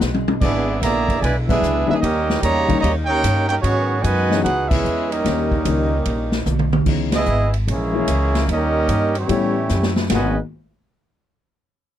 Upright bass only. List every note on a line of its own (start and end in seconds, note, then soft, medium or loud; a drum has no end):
0.01 0.40 B1 medium
0.42 0.81 G#1 loud
0.82 1.21 A#1 medium
1.22 1.61 B1 medium
1.62 1.87 C#2 medium
1.90 muted upright bass stroke soft
2.03 2.42 D#2 loud
2.43 2.82 E2 medium
2.83 3.22 D#2 loud
3.24 3.63 G2 medium
3.63 4.03 G#2 medium
4.04 4.43 F#2 loud
4.45 4.84 C#2 medium
4.85 5.24 E2 medium
5.25 5.64 D#2 medium
5.65 6.05 C#2 loud
6.06 6.45 A#1 medium
6.46 6.85 B1 medium
6.86 7.26 C#2 medium
7.27 7.66 G#1 loud
7.67 8.07 A#1 medium
8.07 8.47 C#2 medium
8.48 8.88 D#2 loud
8.88 9.28 G2 medium
9.29 9.69 A2 medium
9.70 10.09 F#2 medium
10.10 10.35 G#1 loud